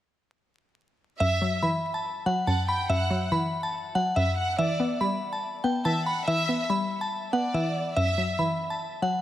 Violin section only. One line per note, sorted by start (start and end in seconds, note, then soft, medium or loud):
1.20 1.60 E5 medium
2.47 2.67 F#5 medium
2.69 2.89 G5 medium
2.90 3.29 F#5 medium
4.16 4.36 E5 medium
4.37 4.57 F#5 medium
4.59 4.98 D5 loud
5.85 6.05 E5 medium
6.07 6.27 F#5 medium
6.27 6.67 E5 loud
7.33 7.93 D5 medium
7.97 8.36 E5 medium